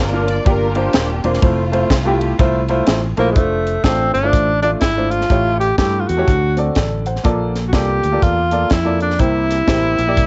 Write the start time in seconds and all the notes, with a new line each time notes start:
Already playing: G1 C3 D4 F4 A#4
0.12 A#3 D4 F4 A#4
0.27 D5, ride
0.45 G1 A#3 D4 F4 G4 A#4, kick, ride
0.75 A#3 D4 F4 G4 C5, ride
0.93 D#1, snare, ride
1.23 E1 A3 A#3 C4 D4 F4 C5, ride
1.33 snare
1.42 F1 A3 E4 F4 C5, kick, ride
1.72 A3 E4 F4 C5, ride
1.90 C2, kick, snare, ride
2.05 A3 E4 F4 G4
2.21 ride
2.38 C2 A3 E4 F4 C5, kick, ride
2.68 A3 E4 F4 C5, ride
2.87 A1, snare, ride
3.17 A#1 A3 A#3 E4 F4 C5, ride
3.31 G#3 A3
3.36 F1 A3 D4 F4 C5, kick, closed hi-hat
3.67 closed hi-hat
3.83 A1 A3 C4 D4 F4 A4, kick, snare, closed hi-hat
4.14 G1 D4, closed hi-hat
4.23 A3 D4 F4 C5
4.33 A1, kick, closed hi-hat
4.62 A3 D4 F4 D5, closed hi-hat
4.81 G#1 E4, kick, snare, closed hi-hat
4.96 A3 D4 F4 C5
5.11 F4, closed hi-hat
5.21 snare
5.29 A1 A2 A3 E4 G4 C#5, kick, closed hi-hat
5.60 G4, closed hi-hat
5.78 G2 A3 E4 G4 A4, kick, snare, closed hi-hat
6.00 F4
6.08 E2 F#4, closed hi-hat
6.17 A3 E4 G4 C#5
6.27 D2 D3, kick, closed hi-hat
6.57 C4 F#4 A4 D5, closed hi-hat
6.75 A1 A4 D5, kick, snare, closed hi-hat
7.06 C5 F#5, closed hi-hat
7.16 snare
7.23 A#1 A#2 A#3 F4 A4 D5, kick, closed hi-hat
7.55 snare, closed hi-hat
7.68 F#4
7.73 C2 A#3 F4 G4 A4 D5, kick, snare, closed hi-hat
8.03 D2, closed hi-hat
8.11 A#3 F4 A4 D5
8.22 E2 F4, kick, closed hi-hat
8.51 A#3 F4 A4 D5, closed hi-hat
8.70 F2 E4, kick, snare, closed hi-hat
8.84 A#3 F4 A4 D5
9.00 D4, closed hi-hat
9.10 snare
9.18 C2 C3 A#3 E4 G4 C5, kick, closed hi-hat
9.50 snare, closed hi-hat
9.67 A1 A#3 E4 G4 C5, kick, snare, closed hi-hat
9.99 A#1, closed hi-hat
10.07 A#3 E4 G4 D5
10.17 C2, kick, closed hi-hat